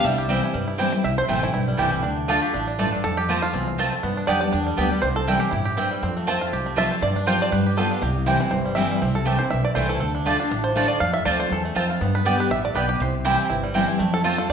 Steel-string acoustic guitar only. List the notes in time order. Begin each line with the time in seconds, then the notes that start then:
0.05 C3
0.29 E3 G3 C4 E4
0.55 G2
0.79 E3 G3 C4 E4
0.93 C4 E4
1.05 C3
1.29 E3 A3 C4 E4
1.54 G2
1.78 E3 A3 C4 E4
2.03 D3
2.28 D3 A3 D4 F4
2.53 A2
2.79 G2
3.04 F2
3.29 F3 A3 C4 F4
3.53 E2
3.78 F2
4.04 G2
4.28 D3 G3 B3 G4
4.41 B3 G4
4.53 D3
4.78 D3 G3 B3 G4
4.91 B3 G4
5.03 C3
5.27 E3 G3 C4 E4
5.52 A2
5.77 G2
6.02 F2
6.27 F3 A3 C4 F4
6.53 C3
6.77 F3 A3 C4 F4
7.03 G2
7.27 F3 G3 C4 F4
7.53 G3
7.77 G3 B3 F4
8.02 C3
8.26 E3 G3 C4 E4
8.39 C4 E4
8.50 G2
8.76 E3 G3 C4 E4
9.01 C3
9.25 E3 A3 C4 E4
9.39 C4 E4
9.52 G2
9.75 E3 A3 C4 E4
10.01 D3
10.25 D3 A3 D4 F4
10.40 D4 F4
10.51 A2
10.75 D3 A3 D4 F4
11.01 F2
11.25 F3 A3 C4 F4
11.50 E2
11.75 F2
12.01 G2
12.25 D3 G3 B3 G4
12.50 A2
12.74 B2
13.00 C3
13.25 E3 G3 C4 E4
13.50 G2
13.75 E3 G3 C4 E4
14.00 F2
14.24 F3 A3 C4 F4
14.38 C4 F4
14.49 C3